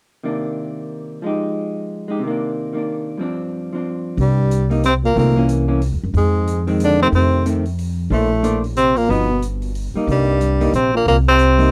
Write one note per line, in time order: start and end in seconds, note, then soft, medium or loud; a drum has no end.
0.23 1.23 C3 soft
0.23 1.22 D#3 soft
0.23 1.23 A#3 soft
0.23 1.24 D4 soft
1.22 2.21 F3 soft
1.22 2.07 G#3 soft
1.26 2.09 D#4 soft
1.26 2.10 G4 soft
2.08 2.21 G#3 soft
2.08 2.22 D#4 soft
2.08 2.23 G4 soft
2.19 3.19 C3 soft
2.24 2.72 D#3 soft
2.24 2.73 A#3 soft
2.30 2.76 D4 soft
2.73 3.19 D#3 soft
2.73 3.20 A#3 soft
2.73 3.21 D4 soft
3.17 4.17 G2 soft
3.17 3.71 F3 soft
3.17 3.74 C4 soft
3.23 3.74 D4 soft
3.73 4.17 F3 soft
3.73 4.18 C4 soft
3.73 4.19 D4 soft
4.17 5.12 C2 medium
4.17 4.68 G2 medium
4.17 4.69 G3 medium
4.17 kick soft
4.17 open hi-hat soft
4.51 closed hi-hat soft
4.70 4.82 G3 soft
4.70 4.82 A#3 medium
4.70 4.83 D#4 medium
4.70 open hi-hat soft
4.83 4.93 C3 medium
4.83 4.94 C4 medium
4.83 closed hi-hat soft
5.04 5.15 A#2 medium
5.04 5.17 A#3 medium
5.15 5.88 C2 medium
5.15 5.47 A#2 medium
5.15 5.34 D#3 soft
5.15 5.35 A3 medium
5.15 5.48 A#3 medium
5.15 5.35 C4 medium
5.15 kick soft
5.15 open hi-hat soft
5.36 5.65 E3 medium
5.36 5.66 A#3 medium
5.36 5.66 C#4 medium
5.49 closed hi-hat soft
5.68 5.80 E3 soft
5.68 5.80 A#3 medium
5.68 5.80 C#4 medium
5.82 open hi-hat soft
5.92 6.03 E2 medium
6.03 6.13 F#2 medium
6.14 7.08 F2 medium
6.14 6.65 G#2 medium
6.14 6.65 G#3 medium
6.14 kick soft
6.14 open hi-hat soft
6.47 closed hi-hat soft
6.67 6.98 D#3 medium
6.67 6.98 G#3 medium
6.67 6.99 C4 medium
6.67 open hi-hat soft
6.80 7.00 D3 medium
6.80 closed hi-hat soft
6.84 7.01 D4 medium
7.00 7.08 C3 medium
7.00 7.43 D#3 medium
7.00 7.44 A3 medium
7.00 7.44 C4 medium
7.00 7.08 C4 medium
7.12 8.07 F2 medium
7.12 7.45 C3 medium
7.12 7.45 C4 medium
7.12 kick soft
7.12 open hi-hat soft
7.45 7.64 D#3 soft
7.45 7.64 A3 medium
7.45 7.64 C4 medium
7.45 closed hi-hat soft
7.65 open hi-hat soft
7.78 open hi-hat soft
8.10 9.05 A#1 medium
8.10 8.61 A2 medium
8.10 8.61 A3 medium
8.10 8.29 A#3 soft
8.10 8.29 D4 soft
8.10 8.30 A4 medium
8.10 8.30 C5 soft
8.10 kick soft
8.10 open hi-hat soft
8.43 8.62 A#3 soft
8.43 8.62 D4 medium
8.43 8.62 A4 soft
8.43 8.62 C5 medium
8.43 closed hi-hat soft
8.64 open hi-hat soft
8.76 8.98 C3 medium
8.76 8.98 C4 medium
8.76 closed hi-hat soft
8.96 9.10 A#2 medium
8.96 9.12 A#3 medium
8.96 open hi-hat soft
9.09 9.91 G1 medium
9.09 9.42 B2 medium
9.09 9.28 F3 soft
9.09 9.28 B3 soft
9.09 9.43 B3 medium
9.09 9.28 D#4 soft
9.09 kick soft
9.09 open hi-hat soft
9.42 closed hi-hat soft
9.62 open hi-hat soft
9.75 open hi-hat soft
9.94 10.38 G3 soft
9.94 10.39 A#3 medium
9.94 10.39 D#4 soft
9.94 muted upright bass stroke soft
10.07 10.69 C2 medium
10.07 10.70 G2 medium
10.07 kick soft
10.07 open hi-hat soft
10.11 10.71 G3 medium
10.41 closed hi-hat soft
10.61 10.72 G3 medium
10.61 10.72 A#3 medium
10.61 10.72 D#4 medium
10.61 open hi-hat soft
10.73 11.04 A#1 medium
10.73 10.93 C3 medium
10.73 10.93 C4 medium
10.73 closed hi-hat soft
10.94 11.06 A#2 medium
10.94 11.07 A#3 medium
11.06 11.71 C2 medium
11.06 11.17 A#2 medium
11.06 11.17 A#3 medium
11.06 kick soft
11.06 open hi-hat soft
11.28 11.71 C3 medium
11.28 11.71 C4 loud
11.39 closed hi-hat soft
11.58 11.71 G3 medium
11.58 11.71 A#3 medium
11.58 11.71 D#4 medium
11.58 open hi-hat soft